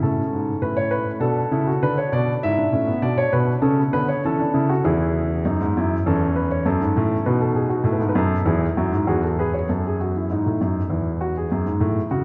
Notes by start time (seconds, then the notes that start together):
0.02 A2 C#4 A4
0.33 G#2
0.62 A2 B4
0.77 C#5
0.91 B4
1.20 B2 D4 A4
1.51 C#3 E4
1.67 F#4
1.83 D3 D4 B4
1.98 C#5
2.12 B2 D5
2.43 G#2 E4 E5
2.58 D4
2.72 A2 C#4
2.87 B3
3.02 B2 D4 D5
3.18 C#5
3.33 B2 B4
3.62 C#3 C#4 A4
3.93 D3 B3 B4
4.08 C#5
4.25 E3 C#4 A4
4.39 D4
4.54 C#3 E4
4.69 F#4
4.84 E2 E4 G#4
5.45 F#2 D#4
5.61 G#2
5.77 F#2 E4
6.06 E2 C#4 A4
6.36 B4
6.51 C#5
6.65 F#2 A4
6.81 G#2
6.97 A2
7.26 B2 D#4 B4
7.41 A4
7.55 G#4
7.69 F#4
7.84 A2 A4
7.92 B4
8.00 G#2 A4
8.09 B4
8.15 F#2 A4
8.46 E2 E4 G#4
8.77 F#2 F#4
8.92 G#2
9.07 E2 F#4 G#4
9.24 A4
9.39 G#4 B4
9.54 C#5
9.69 F#2 A4
9.86 G#4
10.01 F#4
10.17 E4
10.30 G#2 D#4
10.46 A2
10.61 F#2
10.89 E2 E4
11.21 F#4
11.37 G#4
11.52 F#2
11.66 G#2
11.80 A2
12.11 C#3 F#4